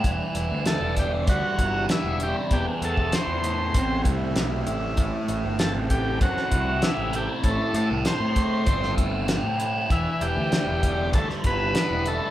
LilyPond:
<<
  \new Staff \with { instrumentName = "Tonewheel organ" } { \time 4/4 \key a \minor \tempo 4 = 97 << { e''1~ | e''1 | a''1~ | a''1~ |
a''1 | } \\ { <g d''>1 | <a' c''>1~ | <a' c''>1~ | <a' c''>1 |
<d'' e''>1 | } >> }
  \new Staff \with { instrumentName = "Transistor combo organ" } { \time 4/4 \key a \minor r4 a'8 g'8 fis'4 e'8 g'8 | g'8 a'8 c''4. r4. | r4 a'8 g'8 fis'4 e'8 g'8 | a'8 a'8 c''4. r4. |
e'8 g'4. a'8 b'4 a'8 | }
  \new Staff \with { instrumentName = "Distorted electric guitar" } { \time 4/4 \key a \minor e8 e'8 g8 d8 g8 e'8 b8 e'8 | e,8 e'8 c'8 a8 c'8 e'8 g'8 e'8 | a,8 e'8 c'8 a8 c'8 e'8 g'8 e'8 | a,8 e'8 c'8 a8 c'8 e'8 g'8 e'8 |
e8 e'8 g8 d8 g8 e'8 b8 e'8 | }
  \new Staff \with { instrumentName = "Picked electric bass" } { \clef bass \time 4/4 \key a \minor e,,16 r16 e,,16 d,8 e,,8. d,16 r16 g,,8 r16 e,,8 r16 | e,,16 r16 e,16 e,,16 r16 e,8. a,,8 c,8 b,,8 a,,8 | a,,16 r16 a,,16 g,,8 a,,8. fis,16 r16 c,8 r16 a,,8 r16 | a,,16 r16 a,16 c,16 r16 a,8. g,,4~ g,,16 a,8. |
e,,16 r16 e,,16 d,8 e,,8. d,16 r16 g,,8 r16 e,,8 r16 | }
  \new DrumStaff \with { instrumentName = "Drums" } \drummode { \time 4/4 <hh bd>8 hh8 <hh sn>8 <hh bd sn>8 <hh bd>8 <hh bd>8 <hh sn>8 hh8 | <hh bd>8 hh16 bd16 <hh sn>8 hh8 <hh bd>8 <hh bd>8 <hh sn>8 hh8 | <hh bd>8 hh8 <hh sn>8 <hh bd>8 <hh bd>16 sn16 <hh bd>8 <hh sn>8 hh8 | <hh bd>8 hh8 <hh sn>8 <hh bd>8 <hh bd>16 sn16 <hh bd>8 <hh sn>8 hh8 |
<hh bd>8 hh8 <hh sn>8 <hh bd>8 <hh bd>16 sn16 <hh bd>8 <hh sn>8 hh8 | }
>>